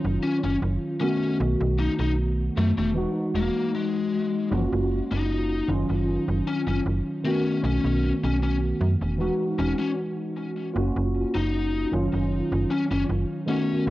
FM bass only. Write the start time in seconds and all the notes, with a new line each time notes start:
0.05 F#1
0.44 F#1
0.62 F#1
1.40 B1
1.60 B1
1.99 B1
2.57 F#2
2.78 E1
3.34 E1
4.52 F#1
4.72 F#1
5.12 F#1
5.68 F#1
5.89 F#1
6.28 F#1
6.67 F#1
6.86 F#1
7.64 B1
7.84 B1
8.23 B1
8.81 F#2
9.01 E1
9.59 E1
10.76 F#1
10.96 F#1
11.35 F#1
11.93 F#1
12.13 F#1
12.52 F#1
12.91 F#1
13.09 F#1
13.87 B1